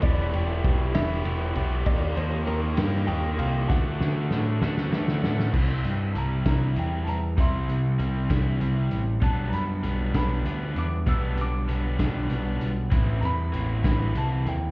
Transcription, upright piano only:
\new Staff \with { instrumentName = "Upright piano" } { \time 6/8 \key c \lydian \tempo 4. = 65 d''4. e''4 r8 | d''8 c''8 bes'4 g''8 f''8 | fis''2~ fis''8 r8 | r4 <a'' bes''>8 bes''8 g''8 <a'' bes''>8 |
<e'' c'''>2 r4 | a''8 <bes'' b''>4 b''4 d'''8 | e'''8 d'''2 r8 | r8 <bes'' b''>4. a''8 g''8 | }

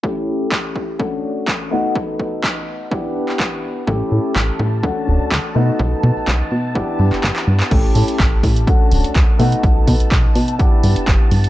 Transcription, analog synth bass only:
\new Staff \with { instrumentName = "Analog synth bass" } { \clef bass \time 4/4 \key a \mixolydian \tempo 4 = 125 r1 | r1 | a,,16 r16 a,16 r16 a,,16 r16 a,8 d,16 r16 d,,16 d,16 d,16 r16 b,16 r16 | b,,16 r16 b,16 b,,16 b,,16 r16 b,8 g,,16 r16 g,16 g,,16 g,,16 r16 g,16 r16 |
a,,16 r16 a,16 r16 a,,16 r16 a,8 d,16 r16 d,,16 d,16 d,16 r16 b,16 r16 | b,,16 r16 b,16 b,,16 b,,16 r16 b,8 g,,16 r16 g,16 g,,16 g,,16 r16 g,16 r16 | }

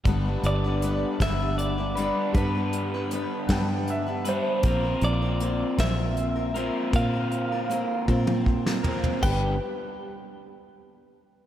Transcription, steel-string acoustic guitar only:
\new Staff \with { instrumentName = "Steel-string acoustic guitar" } { \time 6/8 \key g \mixolydian \tempo 4. = 52 <g, d g b d' b'>16 <g b d' b'>8 <g b d' b'>16 <g b d' b'>8 <g, d g b d' b'>16 <g b d' b'>8 <g b d' b'>16 <g b d' b'>8 | <g, d g b d' b'>16 <g b d' b'>8 <g b d' b'>16 <g b d' b'>8 <g, d g b d' b'>16 <g b d' b'>8 <g b d' b'>16 <g d'>8 | <bes c' f' bes'>16 <c' f' bes'>8 <c' f' bes'>16 <bes c' f' bes'>8 <bes c' f' bes'>16 <c' f' bes'>8 <c' f' bes'>16 <bes c' f' bes'>8 | <bes c' f' bes'>16 <c' f' bes'>8 <c' f' bes'>16 <bes c' f' bes'>8 <bes c' f' bes'>16 <c' f' bes'>8 <c' f' bes'>16 <bes c' f' bes'>8 |
<g, d g d' g' b'>8 r2 r8 | }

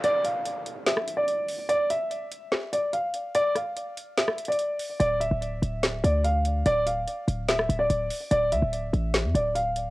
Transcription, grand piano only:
\new Staff \with { instrumentName = "Grand piano" } { \time 4/4 \key d \minor \tempo 4 = 145 d''8 f''4. e''8. d''4~ d''16 | d''8 e''2 d''8 f''4 | d''8 f''4. e''8. d''4~ d''16 | d''8 e''2 d''8 f''4 |
d''8 f''4. e''8. d''4~ d''16 | d''8 e''2 d''8 f''4 | }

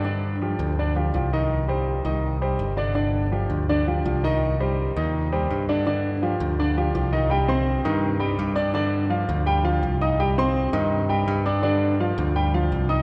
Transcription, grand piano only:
\new Staff \with { instrumentName = "Grand piano" } { \time 4/4 \key c \minor \tempo 4 = 166 <d d' d''>4 <f f' g'>4 <d d' d''>8 <f f' g'>8 <f f' g'>8 <ees ees' ees''>8~ | <ees ees' ees''>8 <g g' c''>4 <ees ees' ees''>4 <g g' c''>4 <d d' d''>8 | <d d' d''>4 <f f' g'>4 <d d' d''>8 <f f' g'>8 <f f' g'>8 <ees ees' ees''>8~ | <ees ees' ees''>8 <g g' c''>4 <ees ees' ees''>4 <g g' c''>4 <d d' d''>8 |
<d d' d''>4 <f f' g'>4 <d d' d''>8 <f f' g'>8 <f f' g'>8 <ees ees' ees''>8 | <g g' g''>8 <c' c'' c'''>4 <ees ees' ees''>4 <g g' g''>4 <d' d'' d'''>8 | <d d' d''>4 <f f' f''>4 <g g' g''>8 <f f' f''>4 <ees' ees'' ees'''>8 | <g g' g''>8 <c' c'' c'''>4 <ees ees' ees''>4 <g g' g''>4 <d' d'' d'''>8 |
<d d' d''>4 <f f' f''>4 <g g' g''>8 <f f' f''>4 <ees' ees'' ees'''>8 | }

